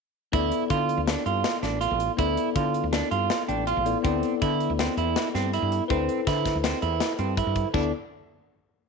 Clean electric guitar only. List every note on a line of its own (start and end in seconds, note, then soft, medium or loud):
0.34 0.63 E4 medium
0.70 1.00 F4 medium
1.08 1.23 D4 medium
1.26 1.56 F4 medium
1.63 1.78 D4 medium
1.81 2.11 F4 medium
2.19 2.49 E4 medium
2.56 2.86 F4 medium
2.93 3.08 D4 medium
3.11 3.41 F4 medium
3.48 3.64 D4 medium
3.67 3.97 F4 medium
4.04 4.34 C4 medium
4.42 4.72 E4 medium
4.79 4.94 C4 medium
4.98 5.28 E4 medium
5.35 5.50 C4 medium
5.54 5.83 E4 medium
5.90 6.20 C4 medium
6.27 6.57 E4 medium
6.64 6.79 C4 medium
6.82 7.12 E4 medium
7.19 7.34 C4 medium
7.38 7.67 E4 medium
7.74 7.91 D4 medium